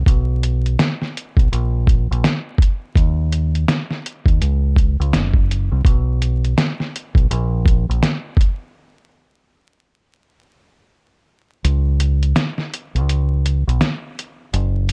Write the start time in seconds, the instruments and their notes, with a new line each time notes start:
0.06 fingered electric bass B1, kick, closed hi-hat
0.43 closed hi-hat
0.66 closed hi-hat
0.79 snare, closed hi-hat
1.02 snare
1.17 closed hi-hat
1.37 fingered electric bass B1, kick, closed hi-hat
1.52 fingered electric bass A#1, closed hi-hat
1.87 kick, closed hi-hat
2.11 fingered electric bass A#1, closed hi-hat
2.24 snare, closed hi-hat
2.58 kick, closed hi-hat
2.95 fingered electric bass D#2, kick, closed hi-hat
3.32 closed hi-hat
3.55 closed hi-hat
3.68 snare, closed hi-hat
3.91 snare
4.06 closed hi-hat
4.26 fingered electric bass D#2, kick, closed hi-hat
4.41 fingered electric bass C#2, closed hi-hat
4.76 kick, closed hi-hat
5.00 fingered electric bass C#2, closed hi-hat
5.13 fingered electric bass F#1, snare, closed hi-hat
5.34 kick
5.51 closed hi-hat
5.72 fingered electric bass C2
5.85 fingered electric bass B1, kick, closed hi-hat
6.22 closed hi-hat
6.45 closed hi-hat
6.58 snare, closed hi-hat
6.80 snare
6.96 closed hi-hat
7.15 fingered electric bass B1, kick, closed hi-hat
7.31 fingered electric bass A#1, closed hi-hat
7.66 kick, closed hi-hat
7.89 fingered electric bass A#1, closed hi-hat
8.03 snare, closed hi-hat
8.37 kick, closed hi-hat
11.64 fingered electric bass C#2, closed hi-hat
12.00 closed hi-hat
12.23 closed hi-hat
12.36 snare, closed hi-hat
12.58 snare
12.74 closed hi-hat
12.95 fingered electric bass C#2, closed hi-hat
13.09 closed hi-hat
13.46 closed hi-hat
13.67 fingered electric bass B1, closed hi-hat
13.81 snare, closed hi-hat
14.19 closed hi-hat
14.53 fingered electric bass F#1, closed hi-hat
14.89 closed hi-hat